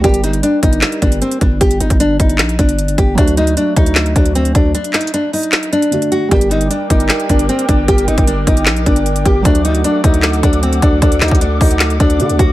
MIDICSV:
0, 0, Header, 1, 6, 480
1, 0, Start_track
1, 0, Key_signature, -2, "minor"
1, 0, Tempo, 392157
1, 49, Time_signature, 4, 2, 24, 8
1, 15331, End_track
2, 0, Start_track
2, 0, Title_t, "Analog synth pad"
2, 0, Program_c, 0, 89
2, 7729, Note_on_c, 0, 70, 79
2, 7729, Note_on_c, 0, 79, 74
2, 7729, Note_on_c, 0, 86, 90
2, 11530, Note_off_c, 0, 70, 0
2, 11530, Note_off_c, 0, 79, 0
2, 11568, Note_on_c, 0, 69, 82
2, 11568, Note_on_c, 0, 78, 73
2, 15331, Note_off_c, 0, 69, 0
2, 15331, Note_off_c, 0, 78, 0
2, 15331, Note_off_c, 0, 86, 0
2, 15331, End_track
3, 0, Start_track
3, 0, Title_t, "Nylon-string guitar"
3, 0, Program_c, 1, 24
3, 49, Note_on_c, 1, 67, 91
3, 242, Note_off_c, 1, 67, 0
3, 289, Note_on_c, 1, 63, 85
3, 483, Note_off_c, 1, 63, 0
3, 528, Note_on_c, 1, 62, 84
3, 722, Note_off_c, 1, 62, 0
3, 769, Note_on_c, 1, 63, 84
3, 1220, Note_off_c, 1, 63, 0
3, 1249, Note_on_c, 1, 62, 79
3, 1443, Note_off_c, 1, 62, 0
3, 1488, Note_on_c, 1, 60, 81
3, 1682, Note_off_c, 1, 60, 0
3, 1728, Note_on_c, 1, 62, 74
3, 1922, Note_off_c, 1, 62, 0
3, 1968, Note_on_c, 1, 67, 87
3, 2162, Note_off_c, 1, 67, 0
3, 2208, Note_on_c, 1, 63, 77
3, 2402, Note_off_c, 1, 63, 0
3, 2449, Note_on_c, 1, 62, 91
3, 2643, Note_off_c, 1, 62, 0
3, 2688, Note_on_c, 1, 63, 68
3, 3140, Note_off_c, 1, 63, 0
3, 3169, Note_on_c, 1, 62, 80
3, 3620, Note_off_c, 1, 62, 0
3, 3649, Note_on_c, 1, 67, 82
3, 3842, Note_off_c, 1, 67, 0
3, 3890, Note_on_c, 1, 62, 93
3, 4083, Note_off_c, 1, 62, 0
3, 4130, Note_on_c, 1, 63, 88
3, 4323, Note_off_c, 1, 63, 0
3, 4369, Note_on_c, 1, 62, 77
3, 4563, Note_off_c, 1, 62, 0
3, 4609, Note_on_c, 1, 63, 90
3, 5060, Note_off_c, 1, 63, 0
3, 5088, Note_on_c, 1, 62, 84
3, 5282, Note_off_c, 1, 62, 0
3, 5329, Note_on_c, 1, 60, 86
3, 5523, Note_off_c, 1, 60, 0
3, 5569, Note_on_c, 1, 62, 73
3, 5763, Note_off_c, 1, 62, 0
3, 5810, Note_on_c, 1, 62, 87
3, 6003, Note_off_c, 1, 62, 0
3, 6049, Note_on_c, 1, 63, 76
3, 6243, Note_off_c, 1, 63, 0
3, 6289, Note_on_c, 1, 62, 84
3, 6483, Note_off_c, 1, 62, 0
3, 6529, Note_on_c, 1, 63, 73
3, 6980, Note_off_c, 1, 63, 0
3, 7008, Note_on_c, 1, 62, 83
3, 7460, Note_off_c, 1, 62, 0
3, 7488, Note_on_c, 1, 66, 83
3, 7682, Note_off_c, 1, 66, 0
3, 7729, Note_on_c, 1, 67, 95
3, 7922, Note_off_c, 1, 67, 0
3, 7970, Note_on_c, 1, 63, 85
3, 8163, Note_off_c, 1, 63, 0
3, 8208, Note_on_c, 1, 62, 84
3, 8402, Note_off_c, 1, 62, 0
3, 8449, Note_on_c, 1, 63, 85
3, 8900, Note_off_c, 1, 63, 0
3, 8929, Note_on_c, 1, 62, 74
3, 9123, Note_off_c, 1, 62, 0
3, 9168, Note_on_c, 1, 60, 84
3, 9362, Note_off_c, 1, 60, 0
3, 9408, Note_on_c, 1, 62, 72
3, 9602, Note_off_c, 1, 62, 0
3, 9648, Note_on_c, 1, 67, 90
3, 9842, Note_off_c, 1, 67, 0
3, 9888, Note_on_c, 1, 63, 77
3, 10082, Note_off_c, 1, 63, 0
3, 10130, Note_on_c, 1, 62, 92
3, 10323, Note_off_c, 1, 62, 0
3, 10368, Note_on_c, 1, 63, 69
3, 10820, Note_off_c, 1, 63, 0
3, 10849, Note_on_c, 1, 62, 81
3, 11300, Note_off_c, 1, 62, 0
3, 11329, Note_on_c, 1, 67, 83
3, 11522, Note_off_c, 1, 67, 0
3, 11570, Note_on_c, 1, 62, 94
3, 11763, Note_off_c, 1, 62, 0
3, 11810, Note_on_c, 1, 63, 85
3, 12003, Note_off_c, 1, 63, 0
3, 12049, Note_on_c, 1, 62, 76
3, 12243, Note_off_c, 1, 62, 0
3, 12289, Note_on_c, 1, 63, 88
3, 12740, Note_off_c, 1, 63, 0
3, 12768, Note_on_c, 1, 62, 85
3, 12962, Note_off_c, 1, 62, 0
3, 13008, Note_on_c, 1, 60, 85
3, 13202, Note_off_c, 1, 60, 0
3, 13249, Note_on_c, 1, 62, 75
3, 13443, Note_off_c, 1, 62, 0
3, 13489, Note_on_c, 1, 62, 88
3, 13683, Note_off_c, 1, 62, 0
3, 13729, Note_on_c, 1, 63, 80
3, 13923, Note_off_c, 1, 63, 0
3, 13969, Note_on_c, 1, 62, 85
3, 14163, Note_off_c, 1, 62, 0
3, 14209, Note_on_c, 1, 63, 75
3, 14660, Note_off_c, 1, 63, 0
3, 14688, Note_on_c, 1, 62, 83
3, 15140, Note_off_c, 1, 62, 0
3, 15168, Note_on_c, 1, 66, 79
3, 15331, Note_off_c, 1, 66, 0
3, 15331, End_track
4, 0, Start_track
4, 0, Title_t, "Felt piano"
4, 0, Program_c, 2, 0
4, 0, Control_c, 2, 64, 127
4, 15, Note_on_c, 2, 55, 72
4, 48, Note_on_c, 2, 74, 61
4, 65, Control_c, 2, 64, 0
4, 81, Note_on_c, 2, 70, 75
4, 265, Control_c, 2, 64, 127
4, 3823, Note_off_c, 2, 55, 0
4, 3839, Note_off_c, 2, 74, 0
4, 3854, Note_on_c, 2, 54, 71
4, 3855, Note_off_c, 2, 70, 0
4, 3887, Note_on_c, 2, 57, 68
4, 3903, Control_c, 2, 64, 0
4, 3920, Note_on_c, 2, 66, 79
4, 4099, Control_c, 2, 64, 127
4, 7183, Note_off_c, 2, 54, 0
4, 7199, Note_off_c, 2, 57, 0
4, 7215, Note_off_c, 2, 66, 0
4, 7231, Note_on_c, 2, 50, 44
4, 7247, Note_on_c, 2, 57, 47
4, 7264, Note_on_c, 2, 66, 57
4, 7695, Note_on_c, 2, 55, 72
4, 7720, Note_off_c, 2, 50, 0
4, 7727, Note_on_c, 2, 74, 64
4, 7728, Note_off_c, 2, 57, 0
4, 7736, Note_off_c, 2, 66, 0
4, 7744, Control_c, 2, 64, 0
4, 7760, Note_on_c, 2, 70, 78
4, 7921, Control_c, 2, 64, 127
4, 11503, Note_off_c, 2, 55, 0
4, 11519, Note_off_c, 2, 74, 0
4, 11535, Note_off_c, 2, 70, 0
4, 11535, Note_on_c, 2, 54, 71
4, 11568, Note_on_c, 2, 57, 69
4, 11584, Control_c, 2, 64, 0
4, 11601, Note_on_c, 2, 66, 76
4, 11812, Control_c, 2, 64, 127
4, 14863, Note_off_c, 2, 54, 0
4, 14879, Note_off_c, 2, 57, 0
4, 14896, Note_off_c, 2, 66, 0
4, 14911, Note_on_c, 2, 50, 47
4, 14928, Note_on_c, 2, 57, 46
4, 14944, Note_on_c, 2, 66, 59
4, 15331, Note_off_c, 2, 50, 0
4, 15331, Note_off_c, 2, 57, 0
4, 15331, Note_off_c, 2, 66, 0
4, 15331, End_track
5, 0, Start_track
5, 0, Title_t, "808-style bass"
5, 0, Program_c, 3, 38
5, 49, Note_on_c, 3, 31, 112
5, 509, Note_off_c, 3, 31, 0
5, 768, Note_on_c, 3, 31, 104
5, 999, Note_off_c, 3, 31, 0
5, 1248, Note_on_c, 3, 31, 103
5, 1479, Note_off_c, 3, 31, 0
5, 1728, Note_on_c, 3, 31, 103
5, 1959, Note_off_c, 3, 31, 0
5, 1969, Note_on_c, 3, 31, 110
5, 2199, Note_off_c, 3, 31, 0
5, 2209, Note_on_c, 3, 31, 101
5, 2321, Note_off_c, 3, 31, 0
5, 2329, Note_on_c, 3, 31, 100
5, 2674, Note_off_c, 3, 31, 0
5, 2688, Note_on_c, 3, 31, 102
5, 2929, Note_on_c, 3, 34, 96
5, 2947, Note_off_c, 3, 31, 0
5, 3156, Note_off_c, 3, 34, 0
5, 3168, Note_on_c, 3, 31, 104
5, 3629, Note_off_c, 3, 31, 0
5, 3648, Note_on_c, 3, 31, 103
5, 3879, Note_off_c, 3, 31, 0
5, 3889, Note_on_c, 3, 38, 117
5, 4349, Note_off_c, 3, 38, 0
5, 4608, Note_on_c, 3, 38, 106
5, 5069, Note_off_c, 3, 38, 0
5, 5088, Note_on_c, 3, 38, 107
5, 5549, Note_off_c, 3, 38, 0
5, 5568, Note_on_c, 3, 38, 104
5, 5799, Note_off_c, 3, 38, 0
5, 7728, Note_on_c, 3, 31, 112
5, 8189, Note_off_c, 3, 31, 0
5, 8447, Note_on_c, 3, 31, 108
5, 8678, Note_off_c, 3, 31, 0
5, 8928, Note_on_c, 3, 31, 102
5, 9159, Note_off_c, 3, 31, 0
5, 9408, Note_on_c, 3, 31, 106
5, 9639, Note_off_c, 3, 31, 0
5, 9648, Note_on_c, 3, 31, 116
5, 9879, Note_off_c, 3, 31, 0
5, 9888, Note_on_c, 3, 31, 105
5, 10004, Note_off_c, 3, 31, 0
5, 10009, Note_on_c, 3, 31, 97
5, 10354, Note_off_c, 3, 31, 0
5, 10367, Note_on_c, 3, 31, 104
5, 10608, Note_on_c, 3, 34, 100
5, 10627, Note_off_c, 3, 31, 0
5, 10836, Note_off_c, 3, 34, 0
5, 10848, Note_on_c, 3, 31, 105
5, 11309, Note_off_c, 3, 31, 0
5, 11328, Note_on_c, 3, 31, 104
5, 11559, Note_off_c, 3, 31, 0
5, 11568, Note_on_c, 3, 38, 113
5, 12029, Note_off_c, 3, 38, 0
5, 12288, Note_on_c, 3, 38, 102
5, 12749, Note_off_c, 3, 38, 0
5, 12768, Note_on_c, 3, 38, 103
5, 13229, Note_off_c, 3, 38, 0
5, 13248, Note_on_c, 3, 38, 103
5, 13479, Note_off_c, 3, 38, 0
5, 13488, Note_on_c, 3, 38, 116
5, 13719, Note_off_c, 3, 38, 0
5, 13728, Note_on_c, 3, 38, 102
5, 13844, Note_off_c, 3, 38, 0
5, 13849, Note_on_c, 3, 38, 101
5, 14194, Note_off_c, 3, 38, 0
5, 14208, Note_on_c, 3, 38, 106
5, 14669, Note_off_c, 3, 38, 0
5, 14688, Note_on_c, 3, 38, 105
5, 14929, Note_on_c, 3, 50, 101
5, 14947, Note_off_c, 3, 38, 0
5, 15048, Note_on_c, 3, 38, 102
5, 15067, Note_off_c, 3, 50, 0
5, 15162, Note_off_c, 3, 38, 0
5, 15168, Note_on_c, 3, 38, 103
5, 15331, Note_off_c, 3, 38, 0
5, 15331, End_track
6, 0, Start_track
6, 0, Title_t, "Drums"
6, 49, Note_on_c, 9, 36, 98
6, 49, Note_on_c, 9, 42, 74
6, 169, Note_off_c, 9, 42, 0
6, 169, Note_on_c, 9, 42, 64
6, 171, Note_off_c, 9, 36, 0
6, 289, Note_off_c, 9, 42, 0
6, 289, Note_on_c, 9, 42, 73
6, 409, Note_off_c, 9, 42, 0
6, 409, Note_on_c, 9, 42, 63
6, 529, Note_off_c, 9, 42, 0
6, 529, Note_on_c, 9, 42, 92
6, 651, Note_off_c, 9, 42, 0
6, 768, Note_on_c, 9, 36, 98
6, 769, Note_on_c, 9, 42, 81
6, 889, Note_off_c, 9, 42, 0
6, 889, Note_on_c, 9, 42, 58
6, 890, Note_off_c, 9, 36, 0
6, 999, Note_on_c, 9, 39, 93
6, 1009, Note_off_c, 9, 42, 0
6, 1009, Note_on_c, 9, 38, 112
6, 1009, Note_on_c, 9, 42, 86
6, 1121, Note_off_c, 9, 39, 0
6, 1129, Note_off_c, 9, 42, 0
6, 1129, Note_on_c, 9, 42, 58
6, 1131, Note_off_c, 9, 38, 0
6, 1248, Note_on_c, 9, 36, 92
6, 1249, Note_off_c, 9, 42, 0
6, 1249, Note_on_c, 9, 42, 73
6, 1369, Note_off_c, 9, 42, 0
6, 1369, Note_on_c, 9, 42, 63
6, 1371, Note_off_c, 9, 36, 0
6, 1489, Note_off_c, 9, 42, 0
6, 1489, Note_on_c, 9, 42, 73
6, 1609, Note_off_c, 9, 42, 0
6, 1609, Note_on_c, 9, 42, 67
6, 1728, Note_on_c, 9, 36, 95
6, 1729, Note_off_c, 9, 42, 0
6, 1729, Note_on_c, 9, 42, 62
6, 1851, Note_off_c, 9, 36, 0
6, 1851, Note_off_c, 9, 42, 0
6, 1969, Note_on_c, 9, 36, 99
6, 1969, Note_on_c, 9, 42, 75
6, 2089, Note_off_c, 9, 42, 0
6, 2089, Note_on_c, 9, 42, 62
6, 2091, Note_off_c, 9, 36, 0
6, 2209, Note_off_c, 9, 42, 0
6, 2209, Note_on_c, 9, 42, 77
6, 2329, Note_off_c, 9, 42, 0
6, 2329, Note_on_c, 9, 36, 94
6, 2329, Note_on_c, 9, 42, 62
6, 2449, Note_off_c, 9, 42, 0
6, 2449, Note_on_c, 9, 42, 90
6, 2451, Note_off_c, 9, 36, 0
6, 2571, Note_off_c, 9, 42, 0
6, 2688, Note_on_c, 9, 36, 102
6, 2689, Note_on_c, 9, 42, 79
6, 2809, Note_off_c, 9, 42, 0
6, 2809, Note_on_c, 9, 42, 57
6, 2810, Note_off_c, 9, 36, 0
6, 2919, Note_on_c, 9, 39, 90
6, 2929, Note_off_c, 9, 42, 0
6, 2929, Note_on_c, 9, 38, 114
6, 2929, Note_on_c, 9, 42, 84
6, 3042, Note_off_c, 9, 39, 0
6, 3049, Note_off_c, 9, 42, 0
6, 3049, Note_on_c, 9, 42, 56
6, 3051, Note_off_c, 9, 38, 0
6, 3168, Note_on_c, 9, 36, 91
6, 3169, Note_off_c, 9, 42, 0
6, 3169, Note_on_c, 9, 42, 73
6, 3289, Note_off_c, 9, 42, 0
6, 3289, Note_on_c, 9, 42, 62
6, 3291, Note_off_c, 9, 36, 0
6, 3409, Note_off_c, 9, 42, 0
6, 3409, Note_on_c, 9, 42, 74
6, 3529, Note_off_c, 9, 42, 0
6, 3529, Note_on_c, 9, 42, 66
6, 3648, Note_on_c, 9, 36, 100
6, 3649, Note_off_c, 9, 42, 0
6, 3649, Note_on_c, 9, 42, 64
6, 3771, Note_off_c, 9, 36, 0
6, 3771, Note_off_c, 9, 42, 0
6, 3889, Note_on_c, 9, 36, 102
6, 3889, Note_on_c, 9, 42, 74
6, 4009, Note_off_c, 9, 42, 0
6, 4009, Note_on_c, 9, 42, 63
6, 4011, Note_off_c, 9, 36, 0
6, 4129, Note_off_c, 9, 42, 0
6, 4129, Note_on_c, 9, 42, 77
6, 4249, Note_off_c, 9, 42, 0
6, 4249, Note_on_c, 9, 42, 65
6, 4369, Note_off_c, 9, 42, 0
6, 4369, Note_on_c, 9, 42, 87
6, 4491, Note_off_c, 9, 42, 0
6, 4608, Note_on_c, 9, 36, 99
6, 4609, Note_on_c, 9, 42, 81
6, 4729, Note_off_c, 9, 42, 0
6, 4729, Note_on_c, 9, 42, 61
6, 4730, Note_off_c, 9, 36, 0
6, 4839, Note_on_c, 9, 39, 90
6, 4848, Note_on_c, 9, 38, 113
6, 4849, Note_off_c, 9, 42, 0
6, 4849, Note_on_c, 9, 42, 85
6, 4961, Note_off_c, 9, 39, 0
6, 4969, Note_off_c, 9, 42, 0
6, 4969, Note_on_c, 9, 42, 58
6, 4971, Note_off_c, 9, 38, 0
6, 5088, Note_on_c, 9, 36, 88
6, 5089, Note_off_c, 9, 42, 0
6, 5089, Note_on_c, 9, 42, 70
6, 5208, Note_off_c, 9, 42, 0
6, 5208, Note_on_c, 9, 42, 62
6, 5211, Note_off_c, 9, 36, 0
6, 5329, Note_off_c, 9, 42, 0
6, 5329, Note_on_c, 9, 42, 72
6, 5449, Note_off_c, 9, 42, 0
6, 5449, Note_on_c, 9, 42, 64
6, 5568, Note_on_c, 9, 36, 98
6, 5569, Note_off_c, 9, 42, 0
6, 5569, Note_on_c, 9, 42, 66
6, 5691, Note_off_c, 9, 36, 0
6, 5691, Note_off_c, 9, 42, 0
6, 5809, Note_on_c, 9, 42, 75
6, 5929, Note_off_c, 9, 42, 0
6, 5929, Note_on_c, 9, 42, 64
6, 6039, Note_on_c, 9, 39, 71
6, 6048, Note_on_c, 9, 38, 93
6, 6049, Note_off_c, 9, 42, 0
6, 6049, Note_on_c, 9, 42, 67
6, 6129, Note_off_c, 9, 42, 0
6, 6129, Note_on_c, 9, 42, 64
6, 6161, Note_off_c, 9, 39, 0
6, 6171, Note_off_c, 9, 38, 0
6, 6209, Note_off_c, 9, 42, 0
6, 6209, Note_on_c, 9, 42, 72
6, 6289, Note_off_c, 9, 42, 0
6, 6289, Note_on_c, 9, 42, 89
6, 6411, Note_off_c, 9, 42, 0
6, 6529, Note_on_c, 9, 46, 78
6, 6649, Note_on_c, 9, 42, 58
6, 6651, Note_off_c, 9, 46, 0
6, 6759, Note_on_c, 9, 39, 90
6, 6769, Note_off_c, 9, 42, 0
6, 6769, Note_on_c, 9, 38, 113
6, 6769, Note_on_c, 9, 42, 83
6, 6881, Note_off_c, 9, 39, 0
6, 6889, Note_off_c, 9, 42, 0
6, 6889, Note_on_c, 9, 42, 57
6, 6891, Note_off_c, 9, 38, 0
6, 7009, Note_off_c, 9, 42, 0
6, 7009, Note_on_c, 9, 42, 71
6, 7129, Note_off_c, 9, 42, 0
6, 7129, Note_on_c, 9, 42, 61
6, 7249, Note_off_c, 9, 42, 0
6, 7249, Note_on_c, 9, 42, 73
6, 7368, Note_off_c, 9, 42, 0
6, 7368, Note_on_c, 9, 42, 67
6, 7489, Note_off_c, 9, 42, 0
6, 7489, Note_on_c, 9, 42, 65
6, 7611, Note_off_c, 9, 42, 0
6, 7728, Note_on_c, 9, 36, 102
6, 7728, Note_on_c, 9, 42, 77
6, 7849, Note_off_c, 9, 42, 0
6, 7849, Note_on_c, 9, 42, 64
6, 7851, Note_off_c, 9, 36, 0
6, 7969, Note_off_c, 9, 42, 0
6, 7969, Note_on_c, 9, 42, 77
6, 8088, Note_off_c, 9, 42, 0
6, 8088, Note_on_c, 9, 42, 62
6, 8209, Note_off_c, 9, 42, 0
6, 8209, Note_on_c, 9, 42, 87
6, 8331, Note_off_c, 9, 42, 0
6, 8447, Note_on_c, 9, 36, 96
6, 8448, Note_on_c, 9, 42, 78
6, 8568, Note_off_c, 9, 42, 0
6, 8568, Note_on_c, 9, 42, 58
6, 8570, Note_off_c, 9, 36, 0
6, 8678, Note_on_c, 9, 39, 86
6, 8688, Note_off_c, 9, 42, 0
6, 8688, Note_on_c, 9, 38, 111
6, 8688, Note_on_c, 9, 42, 83
6, 8801, Note_off_c, 9, 39, 0
6, 8808, Note_off_c, 9, 42, 0
6, 8808, Note_on_c, 9, 42, 58
6, 8810, Note_off_c, 9, 38, 0
6, 8928, Note_off_c, 9, 42, 0
6, 8928, Note_on_c, 9, 36, 89
6, 8928, Note_on_c, 9, 42, 74
6, 9048, Note_off_c, 9, 42, 0
6, 9048, Note_on_c, 9, 42, 61
6, 9050, Note_off_c, 9, 36, 0
6, 9168, Note_off_c, 9, 42, 0
6, 9168, Note_on_c, 9, 42, 71
6, 9288, Note_off_c, 9, 42, 0
6, 9288, Note_on_c, 9, 42, 65
6, 9408, Note_off_c, 9, 42, 0
6, 9408, Note_on_c, 9, 36, 96
6, 9408, Note_on_c, 9, 42, 65
6, 9530, Note_off_c, 9, 36, 0
6, 9531, Note_off_c, 9, 42, 0
6, 9648, Note_on_c, 9, 36, 99
6, 9648, Note_on_c, 9, 42, 77
6, 9768, Note_off_c, 9, 42, 0
6, 9768, Note_on_c, 9, 42, 64
6, 9771, Note_off_c, 9, 36, 0
6, 9888, Note_off_c, 9, 42, 0
6, 9888, Note_on_c, 9, 42, 75
6, 10008, Note_off_c, 9, 42, 0
6, 10008, Note_on_c, 9, 36, 97
6, 10008, Note_on_c, 9, 42, 63
6, 10128, Note_off_c, 9, 42, 0
6, 10128, Note_on_c, 9, 42, 90
6, 10131, Note_off_c, 9, 36, 0
6, 10251, Note_off_c, 9, 42, 0
6, 10368, Note_on_c, 9, 36, 101
6, 10369, Note_on_c, 9, 42, 81
6, 10488, Note_off_c, 9, 42, 0
6, 10488, Note_on_c, 9, 42, 60
6, 10490, Note_off_c, 9, 36, 0
6, 10599, Note_on_c, 9, 39, 92
6, 10608, Note_off_c, 9, 42, 0
6, 10608, Note_on_c, 9, 38, 111
6, 10608, Note_on_c, 9, 42, 85
6, 10721, Note_off_c, 9, 39, 0
6, 10728, Note_off_c, 9, 42, 0
6, 10728, Note_on_c, 9, 42, 57
6, 10731, Note_off_c, 9, 38, 0
6, 10848, Note_on_c, 9, 36, 86
6, 10849, Note_off_c, 9, 42, 0
6, 10849, Note_on_c, 9, 42, 73
6, 10969, Note_off_c, 9, 42, 0
6, 10969, Note_on_c, 9, 42, 60
6, 10971, Note_off_c, 9, 36, 0
6, 11089, Note_off_c, 9, 42, 0
6, 11089, Note_on_c, 9, 42, 70
6, 11209, Note_off_c, 9, 42, 0
6, 11209, Note_on_c, 9, 42, 68
6, 11328, Note_on_c, 9, 36, 98
6, 11329, Note_off_c, 9, 42, 0
6, 11329, Note_on_c, 9, 42, 64
6, 11450, Note_off_c, 9, 36, 0
6, 11451, Note_off_c, 9, 42, 0
6, 11568, Note_on_c, 9, 42, 77
6, 11569, Note_on_c, 9, 36, 104
6, 11689, Note_off_c, 9, 42, 0
6, 11689, Note_on_c, 9, 42, 65
6, 11691, Note_off_c, 9, 36, 0
6, 11809, Note_off_c, 9, 42, 0
6, 11809, Note_on_c, 9, 42, 78
6, 11929, Note_off_c, 9, 42, 0
6, 11929, Note_on_c, 9, 42, 65
6, 12049, Note_off_c, 9, 42, 0
6, 12049, Note_on_c, 9, 42, 90
6, 12171, Note_off_c, 9, 42, 0
6, 12288, Note_on_c, 9, 36, 101
6, 12289, Note_on_c, 9, 42, 79
6, 12409, Note_off_c, 9, 42, 0
6, 12409, Note_on_c, 9, 42, 58
6, 12410, Note_off_c, 9, 36, 0
6, 12518, Note_on_c, 9, 39, 87
6, 12528, Note_off_c, 9, 42, 0
6, 12528, Note_on_c, 9, 38, 115
6, 12528, Note_on_c, 9, 42, 86
6, 12641, Note_off_c, 9, 39, 0
6, 12649, Note_off_c, 9, 42, 0
6, 12649, Note_on_c, 9, 42, 57
6, 12650, Note_off_c, 9, 38, 0
6, 12768, Note_off_c, 9, 42, 0
6, 12768, Note_on_c, 9, 36, 86
6, 12768, Note_on_c, 9, 42, 73
6, 12888, Note_off_c, 9, 42, 0
6, 12888, Note_on_c, 9, 42, 62
6, 12891, Note_off_c, 9, 36, 0
6, 13008, Note_off_c, 9, 42, 0
6, 13008, Note_on_c, 9, 42, 73
6, 13128, Note_off_c, 9, 42, 0
6, 13128, Note_on_c, 9, 42, 67
6, 13248, Note_off_c, 9, 42, 0
6, 13248, Note_on_c, 9, 36, 101
6, 13248, Note_on_c, 9, 42, 63
6, 13370, Note_off_c, 9, 36, 0
6, 13371, Note_off_c, 9, 42, 0
6, 13488, Note_on_c, 9, 36, 103
6, 13488, Note_on_c, 9, 42, 78
6, 13608, Note_off_c, 9, 42, 0
6, 13608, Note_on_c, 9, 42, 62
6, 13611, Note_off_c, 9, 36, 0
6, 13718, Note_on_c, 9, 39, 74
6, 13728, Note_off_c, 9, 42, 0
6, 13728, Note_on_c, 9, 38, 93
6, 13728, Note_on_c, 9, 42, 66
6, 13808, Note_off_c, 9, 42, 0
6, 13808, Note_on_c, 9, 42, 64
6, 13840, Note_off_c, 9, 39, 0
6, 13848, Note_on_c, 9, 36, 100
6, 13850, Note_off_c, 9, 38, 0
6, 13889, Note_off_c, 9, 42, 0
6, 13889, Note_on_c, 9, 42, 67
6, 13969, Note_off_c, 9, 42, 0
6, 13969, Note_on_c, 9, 42, 89
6, 13971, Note_off_c, 9, 36, 0
6, 14091, Note_off_c, 9, 42, 0
6, 14207, Note_on_c, 9, 36, 99
6, 14208, Note_on_c, 9, 46, 78
6, 14329, Note_on_c, 9, 42, 60
6, 14330, Note_off_c, 9, 36, 0
6, 14331, Note_off_c, 9, 46, 0
6, 14439, Note_on_c, 9, 39, 93
6, 14448, Note_off_c, 9, 42, 0
6, 14448, Note_on_c, 9, 38, 113
6, 14448, Note_on_c, 9, 42, 85
6, 14561, Note_off_c, 9, 39, 0
6, 14569, Note_off_c, 9, 42, 0
6, 14569, Note_on_c, 9, 42, 59
6, 14571, Note_off_c, 9, 38, 0
6, 14688, Note_off_c, 9, 42, 0
6, 14688, Note_on_c, 9, 36, 89
6, 14688, Note_on_c, 9, 42, 70
6, 14809, Note_off_c, 9, 42, 0
6, 14809, Note_on_c, 9, 42, 62
6, 14811, Note_off_c, 9, 36, 0
6, 14929, Note_off_c, 9, 42, 0
6, 14929, Note_on_c, 9, 42, 74
6, 15049, Note_off_c, 9, 42, 0
6, 15049, Note_on_c, 9, 42, 68
6, 15168, Note_on_c, 9, 36, 100
6, 15169, Note_off_c, 9, 42, 0
6, 15169, Note_on_c, 9, 42, 65
6, 15290, Note_off_c, 9, 36, 0
6, 15291, Note_off_c, 9, 42, 0
6, 15331, End_track
0, 0, End_of_file